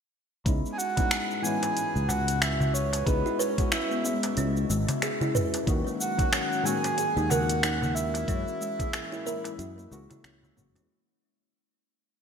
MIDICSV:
0, 0, Header, 1, 8, 480
1, 0, Start_track
1, 0, Tempo, 652174
1, 336, Time_signature, 4, 2, 24, 8
1, 8993, End_track
2, 0, Start_track
2, 0, Title_t, "Soft synth lead"
2, 0, Program_c, 0, 80
2, 533, Note_on_c, 0, 80, 78
2, 573, Note_on_c, 0, 78, 105
2, 584, Note_off_c, 0, 80, 0
2, 1052, Note_on_c, 0, 80, 113
2, 1063, Note_off_c, 0, 78, 0
2, 1534, Note_on_c, 0, 78, 104
2, 1545, Note_off_c, 0, 80, 0
2, 1776, Note_on_c, 0, 76, 91
2, 1787, Note_off_c, 0, 78, 0
2, 2014, Note_on_c, 0, 73, 92
2, 2025, Note_off_c, 0, 76, 0
2, 2249, Note_off_c, 0, 73, 0
2, 2254, Note_on_c, 0, 71, 100
2, 2494, Note_on_c, 0, 73, 86
2, 2505, Note_off_c, 0, 71, 0
2, 2731, Note_off_c, 0, 73, 0
2, 2735, Note_on_c, 0, 76, 96
2, 3426, Note_off_c, 0, 76, 0
2, 4416, Note_on_c, 0, 78, 103
2, 4894, Note_on_c, 0, 80, 115
2, 4905, Note_off_c, 0, 78, 0
2, 5370, Note_on_c, 0, 78, 112
2, 5381, Note_off_c, 0, 80, 0
2, 5845, Note_off_c, 0, 78, 0
2, 5849, Note_on_c, 0, 76, 107
2, 7503, Note_off_c, 0, 76, 0
2, 8993, End_track
3, 0, Start_track
3, 0, Title_t, "Ambient pad"
3, 0, Program_c, 1, 92
3, 338, Note_on_c, 1, 56, 74
3, 536, Note_on_c, 1, 61, 71
3, 568, Note_on_c, 1, 71, 85
3, 634, Note_on_c, 1, 66, 74
3, 4177, Note_off_c, 1, 71, 0
3, 5056, Note_on_c, 1, 70, 82
3, 8016, Note_off_c, 1, 61, 0
3, 8016, Note_off_c, 1, 70, 0
3, 8017, Note_off_c, 1, 56, 0
3, 8017, Note_off_c, 1, 66, 0
3, 8993, End_track
4, 0, Start_track
4, 0, Title_t, "Kalimba"
4, 0, Program_c, 2, 108
4, 2256, Note_on_c, 2, 68, 77
4, 2389, Note_off_c, 2, 68, 0
4, 2399, Note_on_c, 2, 64, 97
4, 2493, Note_off_c, 2, 64, 0
4, 2498, Note_on_c, 2, 71, 98
4, 2727, Note_off_c, 2, 71, 0
4, 2737, Note_on_c, 2, 64, 86
4, 2862, Note_off_c, 2, 64, 0
4, 2879, Note_on_c, 2, 59, 72
4, 3208, Note_off_c, 2, 59, 0
4, 3220, Note_on_c, 2, 61, 90
4, 3350, Note_off_c, 2, 61, 0
4, 3460, Note_on_c, 2, 56, 69
4, 3591, Note_off_c, 2, 56, 0
4, 3701, Note_on_c, 2, 68, 74
4, 3831, Note_off_c, 2, 68, 0
4, 3838, Note_on_c, 2, 64, 91
4, 3932, Note_off_c, 2, 64, 0
4, 3937, Note_on_c, 2, 71, 94
4, 4166, Note_off_c, 2, 71, 0
4, 4178, Note_on_c, 2, 63, 93
4, 4302, Note_off_c, 2, 63, 0
4, 4318, Note_on_c, 2, 58, 75
4, 4647, Note_off_c, 2, 58, 0
4, 4656, Note_on_c, 2, 61, 98
4, 4789, Note_off_c, 2, 61, 0
4, 4900, Note_on_c, 2, 56, 70
4, 5031, Note_off_c, 2, 56, 0
4, 5140, Note_on_c, 2, 68, 74
4, 5271, Note_off_c, 2, 68, 0
4, 5278, Note_on_c, 2, 63, 95
4, 5372, Note_off_c, 2, 63, 0
4, 5381, Note_on_c, 2, 70, 88
4, 5609, Note_off_c, 2, 70, 0
4, 5618, Note_on_c, 2, 63, 92
4, 5742, Note_off_c, 2, 63, 0
4, 5760, Note_on_c, 2, 58, 73
4, 6088, Note_off_c, 2, 58, 0
4, 6097, Note_on_c, 2, 61, 94
4, 6229, Note_off_c, 2, 61, 0
4, 6337, Note_on_c, 2, 56, 74
4, 6469, Note_off_c, 2, 56, 0
4, 6579, Note_on_c, 2, 68, 78
4, 6710, Note_off_c, 2, 68, 0
4, 6715, Note_on_c, 2, 64, 93
4, 6811, Note_off_c, 2, 64, 0
4, 6819, Note_on_c, 2, 70, 106
4, 7047, Note_off_c, 2, 70, 0
4, 7057, Note_on_c, 2, 64, 95
4, 7182, Note_off_c, 2, 64, 0
4, 7198, Note_on_c, 2, 58, 75
4, 7287, Note_off_c, 2, 58, 0
4, 7437, Note_on_c, 2, 64, 101
4, 7527, Note_off_c, 2, 64, 0
4, 7539, Note_on_c, 2, 61, 77
4, 7617, Note_off_c, 2, 61, 0
4, 7679, Note_on_c, 2, 56, 74
4, 7773, Note_off_c, 2, 56, 0
4, 7779, Note_on_c, 2, 58, 72
4, 7910, Note_off_c, 2, 58, 0
4, 7916, Note_on_c, 2, 61, 100
4, 8011, Note_off_c, 2, 61, 0
4, 8993, End_track
5, 0, Start_track
5, 0, Title_t, "Felt piano"
5, 0, Program_c, 3, 0
5, 332, Note_on_c, 3, 63, 73
5, 336, Note_on_c, 3, 56, 70
5, 340, Note_on_c, 3, 59, 65
5, 343, Note_on_c, 3, 61, 69
5, 347, Note_on_c, 3, 64, 77
5, 476, Control_c, 3, 64, 127
5, 680, Note_off_c, 3, 63, 0
5, 682, Note_off_c, 3, 56, 0
5, 684, Note_off_c, 3, 59, 0
5, 686, Note_off_c, 3, 61, 0
5, 687, Note_off_c, 3, 64, 0
5, 710, Note_on_c, 3, 63, 86
5, 714, Note_on_c, 3, 56, 80
5, 717, Note_on_c, 3, 59, 75
5, 721, Note_on_c, 3, 61, 76
5, 724, Note_on_c, 3, 64, 94
5, 1029, Note_off_c, 3, 63, 0
5, 1031, Note_off_c, 3, 56, 0
5, 1033, Note_off_c, 3, 59, 0
5, 1035, Note_off_c, 3, 61, 0
5, 1036, Note_off_c, 3, 64, 0
5, 1044, Note_on_c, 3, 52, 85
5, 1052, Note_on_c, 3, 56, 73
5, 1058, Note_on_c, 3, 59, 74
5, 1066, Note_on_c, 3, 61, 75
5, 1074, Note_on_c, 3, 64, 91
5, 2226, Note_off_c, 3, 52, 0
5, 2230, Note_off_c, 3, 56, 0
5, 2233, Note_off_c, 3, 59, 0
5, 2237, Note_off_c, 3, 61, 0
5, 2241, Note_off_c, 3, 64, 0
5, 2250, Note_on_c, 3, 63, 80
5, 2253, Note_on_c, 3, 56, 70
5, 2256, Note_on_c, 3, 59, 66
5, 2261, Note_on_c, 3, 61, 70
5, 2264, Note_on_c, 3, 64, 85
5, 2599, Note_off_c, 3, 63, 0
5, 2601, Note_off_c, 3, 56, 0
5, 2602, Note_off_c, 3, 59, 0
5, 2604, Note_off_c, 3, 61, 0
5, 2606, Note_off_c, 3, 64, 0
5, 2634, Note_on_c, 3, 56, 77
5, 2639, Note_on_c, 3, 59, 73
5, 2641, Note_on_c, 3, 61, 75
5, 2644, Note_on_c, 3, 66, 89
5, 2951, Note_off_c, 3, 56, 0
5, 2954, Note_off_c, 3, 59, 0
5, 2955, Note_off_c, 3, 61, 0
5, 2956, Note_off_c, 3, 66, 0
5, 2972, Note_on_c, 3, 56, 70
5, 2975, Note_on_c, 3, 59, 73
5, 2979, Note_on_c, 3, 61, 75
5, 2982, Note_on_c, 3, 76, 94
5, 3199, Note_off_c, 3, 56, 0
5, 3201, Note_off_c, 3, 59, 0
5, 3202, Note_off_c, 3, 61, 0
5, 3204, Note_off_c, 3, 76, 0
5, 4167, Note_on_c, 3, 51, 76
5, 4171, Note_on_c, 3, 54, 70
5, 4174, Note_on_c, 3, 58, 68
5, 4177, Note_on_c, 3, 61, 69
5, 4182, Note_on_c, 3, 66, 86
5, 4186, Control_c, 3, 64, 0
5, 4330, Control_c, 3, 64, 127
5, 4517, Note_off_c, 3, 51, 0
5, 4519, Note_off_c, 3, 54, 0
5, 4521, Note_off_c, 3, 58, 0
5, 4522, Note_off_c, 3, 61, 0
5, 4525, Note_off_c, 3, 66, 0
5, 4543, Note_on_c, 3, 51, 89
5, 4548, Note_on_c, 3, 54, 80
5, 4551, Note_on_c, 3, 58, 84
5, 4555, Note_on_c, 3, 61, 78
5, 4559, Note_on_c, 3, 66, 96
5, 4866, Note_off_c, 3, 51, 0
5, 4868, Note_off_c, 3, 54, 0
5, 4870, Note_off_c, 3, 58, 0
5, 4872, Note_off_c, 3, 61, 0
5, 4874, Note_off_c, 3, 66, 0
5, 4879, Note_on_c, 3, 51, 85
5, 4885, Note_on_c, 3, 54, 75
5, 4891, Note_on_c, 3, 58, 78
5, 4899, Note_on_c, 3, 61, 75
5, 4907, Note_on_c, 3, 66, 93
5, 6063, Note_off_c, 3, 51, 0
5, 6067, Note_off_c, 3, 54, 0
5, 6069, Note_off_c, 3, 58, 0
5, 6073, Note_off_c, 3, 61, 0
5, 6077, Note_off_c, 3, 66, 0
5, 6089, Note_on_c, 3, 52, 82
5, 6093, Note_on_c, 3, 56, 78
5, 6096, Note_on_c, 3, 58, 72
5, 6100, Note_on_c, 3, 61, 73
5, 6103, Note_on_c, 3, 66, 82
5, 6107, Control_c, 3, 64, 0
5, 6232, Control_c, 3, 64, 127
5, 6439, Note_off_c, 3, 52, 0
5, 6441, Note_off_c, 3, 56, 0
5, 6442, Note_off_c, 3, 58, 0
5, 6444, Note_off_c, 3, 61, 0
5, 6446, Note_off_c, 3, 66, 0
5, 6469, Note_on_c, 3, 52, 87
5, 6472, Note_on_c, 3, 56, 74
5, 6477, Note_on_c, 3, 58, 76
5, 6479, Note_on_c, 3, 61, 75
5, 6483, Note_on_c, 3, 68, 97
5, 6789, Note_off_c, 3, 52, 0
5, 6790, Note_off_c, 3, 56, 0
5, 6793, Note_off_c, 3, 58, 0
5, 6794, Note_off_c, 3, 61, 0
5, 6796, Note_off_c, 3, 68, 0
5, 6812, Note_on_c, 3, 52, 79
5, 6816, Note_on_c, 3, 56, 75
5, 6818, Note_on_c, 3, 58, 75
5, 6824, Note_on_c, 3, 61, 74
5, 6826, Note_on_c, 3, 64, 88
5, 7039, Note_off_c, 3, 52, 0
5, 7041, Note_off_c, 3, 56, 0
5, 7042, Note_off_c, 3, 58, 0
5, 7045, Note_off_c, 3, 61, 0
5, 7046, Note_off_c, 3, 64, 0
5, 7288, Note_on_c, 3, 52, 87
5, 7292, Note_on_c, 3, 56, 86
5, 7295, Note_on_c, 3, 58, 86
5, 7300, Note_on_c, 3, 61, 77
5, 7303, Note_on_c, 3, 66, 99
5, 7748, Note_off_c, 3, 52, 0
5, 7750, Note_off_c, 3, 56, 0
5, 7752, Note_off_c, 3, 58, 0
5, 7754, Note_off_c, 3, 61, 0
5, 7756, Note_off_c, 3, 66, 0
5, 7768, Note_on_c, 3, 52, 87
5, 7771, Note_on_c, 3, 56, 79
5, 7774, Note_on_c, 3, 58, 81
5, 7778, Note_on_c, 3, 61, 80
5, 7781, Note_on_c, 3, 66, 93
5, 7988, Note_off_c, 3, 52, 0
5, 7989, Note_off_c, 3, 56, 0
5, 7991, Note_off_c, 3, 58, 0
5, 7993, Note_off_c, 3, 61, 0
5, 7995, Note_off_c, 3, 66, 0
5, 8027, Control_c, 3, 64, 0
5, 8993, End_track
6, 0, Start_track
6, 0, Title_t, "Fretless electric bass"
6, 0, Program_c, 4, 35
6, 337, Note_on_c, 4, 37, 89
6, 446, Note_off_c, 4, 37, 0
6, 1438, Note_on_c, 4, 37, 86
6, 2223, Note_off_c, 4, 37, 0
6, 2257, Note_on_c, 4, 37, 92
6, 2365, Note_off_c, 4, 37, 0
6, 3217, Note_on_c, 4, 37, 86
6, 3413, Note_off_c, 4, 37, 0
6, 3456, Note_on_c, 4, 32, 90
6, 3565, Note_off_c, 4, 32, 0
6, 4175, Note_on_c, 4, 39, 88
6, 4285, Note_off_c, 4, 39, 0
6, 5273, Note_on_c, 4, 39, 94
6, 6060, Note_off_c, 4, 39, 0
6, 6094, Note_on_c, 4, 42, 90
6, 6204, Note_off_c, 4, 42, 0
6, 7054, Note_on_c, 4, 42, 84
6, 7251, Note_off_c, 4, 42, 0
6, 7294, Note_on_c, 4, 37, 85
6, 7404, Note_off_c, 4, 37, 0
6, 7534, Note_on_c, 4, 37, 97
6, 7732, Note_off_c, 4, 37, 0
6, 7777, Note_on_c, 4, 30, 71
6, 7915, Note_on_c, 4, 40, 79
6, 7926, Note_off_c, 4, 30, 0
6, 7994, Note_off_c, 4, 40, 0
6, 8993, End_track
7, 0, Start_track
7, 0, Title_t, "Darbuka"
7, 716, Note_on_c, 9, 62, 66
7, 789, Note_off_c, 9, 62, 0
7, 1199, Note_on_c, 9, 63, 78
7, 1273, Note_off_c, 9, 63, 0
7, 1537, Note_on_c, 9, 63, 78
7, 1540, Note_on_c, 9, 64, 77
7, 1544, Note_on_c, 9, 62, 46
7, 1610, Note_off_c, 9, 63, 0
7, 1614, Note_off_c, 9, 64, 0
7, 1617, Note_off_c, 9, 62, 0
7, 1916, Note_on_c, 9, 64, 89
7, 1990, Note_off_c, 9, 64, 0
7, 2155, Note_on_c, 9, 63, 77
7, 2228, Note_off_c, 9, 63, 0
7, 2642, Note_on_c, 9, 62, 67
7, 2715, Note_off_c, 9, 62, 0
7, 3118, Note_on_c, 9, 63, 87
7, 3191, Note_off_c, 9, 63, 0
7, 3463, Note_on_c, 9, 62, 49
7, 3537, Note_off_c, 9, 62, 0
7, 3595, Note_on_c, 9, 64, 87
7, 3596, Note_on_c, 9, 63, 67
7, 3668, Note_off_c, 9, 64, 0
7, 3670, Note_off_c, 9, 63, 0
7, 3833, Note_on_c, 9, 64, 87
7, 3907, Note_off_c, 9, 64, 0
7, 4080, Note_on_c, 9, 63, 73
7, 4154, Note_off_c, 9, 63, 0
7, 4557, Note_on_c, 9, 62, 67
7, 4631, Note_off_c, 9, 62, 0
7, 5038, Note_on_c, 9, 63, 83
7, 5111, Note_off_c, 9, 63, 0
7, 5375, Note_on_c, 9, 63, 75
7, 5376, Note_on_c, 9, 62, 49
7, 5378, Note_on_c, 9, 64, 87
7, 5449, Note_off_c, 9, 63, 0
7, 5450, Note_off_c, 9, 62, 0
7, 5451, Note_off_c, 9, 64, 0
7, 5756, Note_on_c, 9, 64, 88
7, 5830, Note_off_c, 9, 64, 0
7, 5992, Note_on_c, 9, 63, 74
7, 6065, Note_off_c, 9, 63, 0
7, 6472, Note_on_c, 9, 62, 66
7, 6545, Note_off_c, 9, 62, 0
7, 6951, Note_on_c, 9, 63, 76
7, 7025, Note_off_c, 9, 63, 0
7, 7299, Note_on_c, 9, 62, 51
7, 7372, Note_off_c, 9, 62, 0
7, 7432, Note_on_c, 9, 63, 57
7, 7439, Note_on_c, 9, 64, 99
7, 7506, Note_off_c, 9, 63, 0
7, 7513, Note_off_c, 9, 64, 0
7, 7678, Note_on_c, 9, 64, 100
7, 7752, Note_off_c, 9, 64, 0
7, 7915, Note_on_c, 9, 63, 72
7, 7989, Note_off_c, 9, 63, 0
7, 8993, End_track
8, 0, Start_track
8, 0, Title_t, "Drums"
8, 337, Note_on_c, 9, 36, 115
8, 339, Note_on_c, 9, 42, 46
8, 345, Note_on_c, 9, 69, 41
8, 411, Note_off_c, 9, 36, 0
8, 413, Note_off_c, 9, 42, 0
8, 418, Note_off_c, 9, 69, 0
8, 484, Note_on_c, 9, 69, 21
8, 558, Note_off_c, 9, 69, 0
8, 584, Note_on_c, 9, 69, 76
8, 658, Note_off_c, 9, 69, 0
8, 716, Note_on_c, 9, 42, 50
8, 717, Note_on_c, 9, 36, 105
8, 722, Note_on_c, 9, 69, 30
8, 790, Note_off_c, 9, 36, 0
8, 790, Note_off_c, 9, 42, 0
8, 796, Note_off_c, 9, 69, 0
8, 817, Note_on_c, 9, 26, 105
8, 817, Note_on_c, 9, 42, 42
8, 823, Note_on_c, 9, 69, 43
8, 891, Note_off_c, 9, 26, 0
8, 891, Note_off_c, 9, 42, 0
8, 897, Note_off_c, 9, 69, 0
8, 963, Note_on_c, 9, 69, 20
8, 1037, Note_off_c, 9, 69, 0
8, 1065, Note_on_c, 9, 69, 73
8, 1139, Note_off_c, 9, 69, 0
8, 1197, Note_on_c, 9, 42, 54
8, 1203, Note_on_c, 9, 69, 33
8, 1271, Note_off_c, 9, 42, 0
8, 1277, Note_off_c, 9, 69, 0
8, 1300, Note_on_c, 9, 42, 45
8, 1306, Note_on_c, 9, 69, 43
8, 1374, Note_off_c, 9, 42, 0
8, 1379, Note_off_c, 9, 69, 0
8, 1445, Note_on_c, 9, 69, 19
8, 1519, Note_off_c, 9, 69, 0
8, 1544, Note_on_c, 9, 69, 73
8, 1617, Note_off_c, 9, 69, 0
8, 1679, Note_on_c, 9, 42, 55
8, 1685, Note_on_c, 9, 69, 32
8, 1753, Note_off_c, 9, 42, 0
8, 1758, Note_off_c, 9, 69, 0
8, 1779, Note_on_c, 9, 26, 92
8, 1779, Note_on_c, 9, 42, 47
8, 1785, Note_on_c, 9, 69, 40
8, 1853, Note_off_c, 9, 26, 0
8, 1853, Note_off_c, 9, 42, 0
8, 1858, Note_off_c, 9, 69, 0
8, 1924, Note_on_c, 9, 69, 21
8, 1998, Note_off_c, 9, 69, 0
8, 2024, Note_on_c, 9, 69, 74
8, 2097, Note_off_c, 9, 69, 0
8, 2159, Note_on_c, 9, 42, 57
8, 2165, Note_on_c, 9, 69, 33
8, 2233, Note_off_c, 9, 42, 0
8, 2238, Note_off_c, 9, 69, 0
8, 2257, Note_on_c, 9, 36, 116
8, 2259, Note_on_c, 9, 42, 46
8, 2265, Note_on_c, 9, 69, 42
8, 2330, Note_off_c, 9, 36, 0
8, 2333, Note_off_c, 9, 42, 0
8, 2338, Note_off_c, 9, 69, 0
8, 2404, Note_on_c, 9, 69, 21
8, 2478, Note_off_c, 9, 69, 0
8, 2503, Note_on_c, 9, 69, 78
8, 2577, Note_off_c, 9, 69, 0
8, 2636, Note_on_c, 9, 36, 106
8, 2636, Note_on_c, 9, 42, 49
8, 2642, Note_on_c, 9, 69, 30
8, 2709, Note_off_c, 9, 36, 0
8, 2710, Note_off_c, 9, 42, 0
8, 2716, Note_off_c, 9, 69, 0
8, 2736, Note_on_c, 9, 26, 99
8, 2736, Note_on_c, 9, 42, 41
8, 2742, Note_on_c, 9, 69, 44
8, 2810, Note_off_c, 9, 26, 0
8, 2810, Note_off_c, 9, 42, 0
8, 2816, Note_off_c, 9, 69, 0
8, 2881, Note_on_c, 9, 69, 21
8, 2954, Note_off_c, 9, 69, 0
8, 2981, Note_on_c, 9, 69, 77
8, 3055, Note_off_c, 9, 69, 0
8, 3115, Note_on_c, 9, 42, 57
8, 3121, Note_on_c, 9, 69, 33
8, 3188, Note_off_c, 9, 42, 0
8, 3194, Note_off_c, 9, 69, 0
8, 3215, Note_on_c, 9, 42, 42
8, 3221, Note_on_c, 9, 69, 46
8, 3288, Note_off_c, 9, 42, 0
8, 3294, Note_off_c, 9, 69, 0
8, 3361, Note_on_c, 9, 69, 22
8, 3435, Note_off_c, 9, 69, 0
8, 3461, Note_on_c, 9, 69, 70
8, 3535, Note_off_c, 9, 69, 0
8, 3595, Note_on_c, 9, 42, 51
8, 3601, Note_on_c, 9, 69, 31
8, 3669, Note_off_c, 9, 42, 0
8, 3675, Note_off_c, 9, 69, 0
8, 3696, Note_on_c, 9, 26, 97
8, 3696, Note_on_c, 9, 42, 44
8, 3702, Note_on_c, 9, 69, 43
8, 3769, Note_off_c, 9, 26, 0
8, 3769, Note_off_c, 9, 42, 0
8, 3775, Note_off_c, 9, 69, 0
8, 3843, Note_on_c, 9, 69, 22
8, 3916, Note_off_c, 9, 69, 0
8, 3937, Note_on_c, 9, 45, 72
8, 3943, Note_on_c, 9, 69, 75
8, 4010, Note_off_c, 9, 45, 0
8, 4016, Note_off_c, 9, 69, 0
8, 4076, Note_on_c, 9, 42, 52
8, 4081, Note_on_c, 9, 69, 33
8, 4149, Note_off_c, 9, 42, 0
8, 4155, Note_off_c, 9, 69, 0
8, 4175, Note_on_c, 9, 36, 121
8, 4176, Note_on_c, 9, 42, 43
8, 4182, Note_on_c, 9, 69, 46
8, 4248, Note_off_c, 9, 36, 0
8, 4249, Note_off_c, 9, 42, 0
8, 4255, Note_off_c, 9, 69, 0
8, 4322, Note_on_c, 9, 69, 23
8, 4396, Note_off_c, 9, 69, 0
8, 4422, Note_on_c, 9, 69, 81
8, 4496, Note_off_c, 9, 69, 0
8, 4553, Note_on_c, 9, 36, 117
8, 4556, Note_on_c, 9, 42, 51
8, 4562, Note_on_c, 9, 69, 32
8, 4627, Note_off_c, 9, 36, 0
8, 4629, Note_off_c, 9, 42, 0
8, 4635, Note_off_c, 9, 69, 0
8, 4656, Note_on_c, 9, 26, 101
8, 4656, Note_on_c, 9, 42, 42
8, 4662, Note_on_c, 9, 69, 45
8, 4729, Note_off_c, 9, 26, 0
8, 4729, Note_off_c, 9, 42, 0
8, 4735, Note_off_c, 9, 69, 0
8, 4802, Note_on_c, 9, 69, 22
8, 4875, Note_off_c, 9, 69, 0
8, 4903, Note_on_c, 9, 69, 78
8, 4977, Note_off_c, 9, 69, 0
8, 5036, Note_on_c, 9, 42, 54
8, 5042, Note_on_c, 9, 69, 34
8, 5110, Note_off_c, 9, 42, 0
8, 5116, Note_off_c, 9, 69, 0
8, 5136, Note_on_c, 9, 42, 43
8, 5142, Note_on_c, 9, 69, 46
8, 5209, Note_off_c, 9, 42, 0
8, 5215, Note_off_c, 9, 69, 0
8, 5281, Note_on_c, 9, 69, 22
8, 5355, Note_off_c, 9, 69, 0
8, 5381, Note_on_c, 9, 69, 80
8, 5454, Note_off_c, 9, 69, 0
8, 5516, Note_on_c, 9, 42, 53
8, 5522, Note_on_c, 9, 69, 34
8, 5590, Note_off_c, 9, 42, 0
8, 5596, Note_off_c, 9, 69, 0
8, 5617, Note_on_c, 9, 26, 100
8, 5617, Note_on_c, 9, 42, 42
8, 5623, Note_on_c, 9, 69, 44
8, 5691, Note_off_c, 9, 26, 0
8, 5691, Note_off_c, 9, 42, 0
8, 5697, Note_off_c, 9, 69, 0
8, 5764, Note_on_c, 9, 69, 23
8, 5838, Note_off_c, 9, 69, 0
8, 5862, Note_on_c, 9, 69, 80
8, 5936, Note_off_c, 9, 69, 0
8, 5997, Note_on_c, 9, 42, 49
8, 6003, Note_on_c, 9, 69, 34
8, 6071, Note_off_c, 9, 42, 0
8, 6077, Note_off_c, 9, 69, 0
8, 6094, Note_on_c, 9, 36, 119
8, 6095, Note_on_c, 9, 42, 41
8, 6101, Note_on_c, 9, 69, 47
8, 6168, Note_off_c, 9, 36, 0
8, 6169, Note_off_c, 9, 42, 0
8, 6175, Note_off_c, 9, 69, 0
8, 6241, Note_on_c, 9, 69, 22
8, 6315, Note_off_c, 9, 69, 0
8, 6342, Note_on_c, 9, 69, 76
8, 6416, Note_off_c, 9, 69, 0
8, 6474, Note_on_c, 9, 36, 115
8, 6475, Note_on_c, 9, 42, 50
8, 6481, Note_on_c, 9, 69, 34
8, 6547, Note_off_c, 9, 36, 0
8, 6549, Note_off_c, 9, 42, 0
8, 6555, Note_off_c, 9, 69, 0
8, 6575, Note_on_c, 9, 26, 97
8, 6575, Note_on_c, 9, 42, 39
8, 6581, Note_on_c, 9, 69, 44
8, 6649, Note_off_c, 9, 26, 0
8, 6649, Note_off_c, 9, 42, 0
8, 6655, Note_off_c, 9, 69, 0
8, 6722, Note_on_c, 9, 69, 23
8, 6796, Note_off_c, 9, 69, 0
8, 6822, Note_on_c, 9, 69, 77
8, 6896, Note_off_c, 9, 69, 0
8, 6957, Note_on_c, 9, 42, 52
8, 6962, Note_on_c, 9, 69, 35
8, 7030, Note_off_c, 9, 42, 0
8, 7036, Note_off_c, 9, 69, 0
8, 7058, Note_on_c, 9, 42, 41
8, 7064, Note_on_c, 9, 69, 46
8, 7132, Note_off_c, 9, 42, 0
8, 7138, Note_off_c, 9, 69, 0
8, 7204, Note_on_c, 9, 69, 23
8, 7277, Note_off_c, 9, 69, 0
8, 7303, Note_on_c, 9, 69, 73
8, 7377, Note_off_c, 9, 69, 0
8, 7438, Note_on_c, 9, 42, 49
8, 7444, Note_on_c, 9, 69, 34
8, 7511, Note_off_c, 9, 42, 0
8, 7517, Note_off_c, 9, 69, 0
8, 7538, Note_on_c, 9, 26, 98
8, 7538, Note_on_c, 9, 42, 43
8, 7544, Note_on_c, 9, 69, 47
8, 7612, Note_off_c, 9, 26, 0
8, 7612, Note_off_c, 9, 42, 0
8, 7618, Note_off_c, 9, 69, 0
8, 7686, Note_on_c, 9, 69, 21
8, 7760, Note_off_c, 9, 69, 0
8, 7779, Note_on_c, 9, 45, 77
8, 7785, Note_on_c, 9, 69, 79
8, 7853, Note_off_c, 9, 45, 0
8, 7859, Note_off_c, 9, 69, 0
8, 7920, Note_on_c, 9, 42, 51
8, 7926, Note_on_c, 9, 69, 34
8, 7994, Note_off_c, 9, 42, 0
8, 8000, Note_off_c, 9, 69, 0
8, 8993, End_track
0, 0, End_of_file